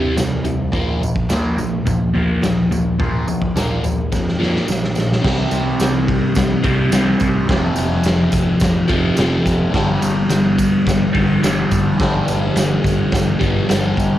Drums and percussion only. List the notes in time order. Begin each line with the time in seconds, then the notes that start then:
0.16 snare, floor tom, tambourine
0.44 floor tom, tambourine
0.72 kick, floor tom, tambourine
1.00 floor tom, tambourine
1.16 kick
1.29 snare, floor tom, tambourine
1.58 floor tom, tambourine
1.87 kick, floor tom, tambourine
2.15 floor tom
2.42 snare, floor tom, tambourine
2.71 floor tom, tambourine
3.00 kick, floor tom
3.28 floor tom, tambourine
3.42 kick
3.56 snare, floor tom, tambourine
3.84 floor tom, tambourine
4.12 kick, snare, tambourine
4.28 snare
4.42 snare
4.56 snare
4.68 snare, tambourine
4.84 snare
4.95 snare, tambourine
5.12 snare
5.24 kick, snare, crash
5.51 ride, tambourine
5.80 snare, ride, tambourine
6.08 kick, ride
6.35 kick, snare, ride, tambourine
6.63 kick, ride, tambourine
6.92 snare, ride, tambourine
7.20 kick, ride, tambourine
7.49 kick, snare, ride
7.76 ride, tambourine
8.04 snare, ride, tambourine
8.32 kick, ride, tambourine
8.60 kick, snare, ride, tambourine
8.88 kick, ride, tambourine
9.17 snare, ride, tambourine
9.46 kick, ride, tambourine
9.74 kick, snare, ride
10.02 ride, tambourine
10.29 snare, ride, tambourine
10.58 kick, ride, tambourine
10.87 kick, snare, ride, tambourine
11.15 kick, ride
11.43 snare, ride, tambourine
11.71 kick, ride, tambourine
12.00 kick, snare, ride, tambourine
12.28 ride, tambourine
12.56 snare, ride, tambourine
12.84 kick, ride, tambourine
13.12 kick, snare, ride, tambourine
13.41 kick, ride, tambourine
13.69 snare, ride, tambourine
13.97 kick, ride, tambourine